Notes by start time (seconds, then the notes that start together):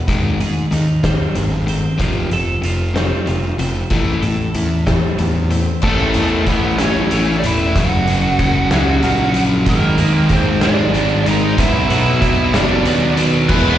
0.07 G#1 G#2 D#3 G#3, kick, closed hi-hat
0.40 G#2 D#3 G#4, closed hi-hat
0.71 D#2 G#2 D#3 D#4, closed hi-hat
1.03 G#2 D#3 C4, kick, snare, closed hi-hat
1.35 G1 G#2 D#3 G#3, closed hi-hat
1.66 G#2 D#3 C4, closed hi-hat
1.98 F1 F2 C3 F3, kick, closed hi-hat
2.30 F1 F2 C3 A4, closed hi-hat
2.62 F1 F2 C3 F4, closed hi-hat
2.94 F2 C3 C4, snare, closed hi-hat
3.26 F1 F2 C3 F3, closed hi-hat
3.58 F1 F2 C3 C4, closed hi-hat
3.90 A1 A2 E3 A3, kick, closed hi-hat
4.22 A2 E3 A4, closed hi-hat
4.54 E2 A2 E3 E4, closed hi-hat
4.86 A2 E3 C4, kick, snare, closed hi-hat
5.18 E2 A2 E3, closed hi-hat
5.50 A2 E3 C4, closed hi-hat
5.82 A1 A2 E3 A3, kick, crash
5.88 A4
6.14 E2 A2 E3 A3 E4, closed hi-hat
6.47 A1 A2 E3 A3 B3 C#4, kick, closed hi-hat
6.52 B4
6.78 A1 A2 E3 A3, snare, closed hi-hat
6.83 C#4 C#5
7.11 A1 A2 E3 A3, closed hi-hat
7.38 D5
7.43 E1 A2 E3 A3 E4, closed hi-hat
7.49 E5
7.76 F#1 F#2 C#3 F#3 F#4, kick, closed hi-hat
7.80 F#5
8.07 F#1 F#2 C#3 F#3 F#4, closed hi-hat
8.39 F#1 F#2 C#3 F#3 C#4, kick, closed hi-hat
8.71 C#2 F#2 C#3 F#3 F#4 F#5, snare, closed hi-hat
9.03 A#1 F#2 C#3 F#3 A#3, closed hi-hat
9.34 F#2 C#3 F#3, closed hi-hat
9.66 G#1 G#2 D#3 G#3 A#3 A#4, kick, closed hi-hat
9.98 D#2 G#2 D#3 G#3 G#4, closed hi-hat
10.29 G#1 G#2 D#3 G#3 C4 C5, kick, closed hi-hat
10.61 G#1 G#2 D#3 G#3 D4 D5, snare, closed hi-hat
10.93 G#1 G#2 D#3 G#3 C4, closed hi-hat
11.24 G#1 G#2 D#3 G#3 D#4 D#5, closed hi-hat
11.57 B1 B2 F#3 B3 E4 E5, kick, closed hi-hat
11.89 B1 B2 F#3 B3 F#4, closed hi-hat
12.21 B1 B2 F#3 B3 D4, kick, closed hi-hat
12.53 F#1 B2 F#3 B3 D4 D5, snare, closed hi-hat
12.86 D#2 B2 F#3 B3, closed hi-hat
13.17 B2 F#3 B3, closed hi-hat
13.49 E1 E3 G#3 B3 E4 G#4 B4, kick, crash